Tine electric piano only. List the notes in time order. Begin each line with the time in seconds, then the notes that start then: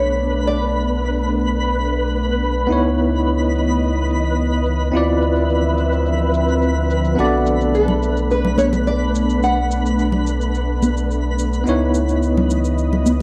Already playing: B3 D4 A4 B4
2.67 B3 D#4 E4
2.73 C#5
4.92 C4 E4 F4
4.97 D5
7.15 B3 D4 A4
7.20 D5
11.64 B3 D#4 E4
11.69 C#5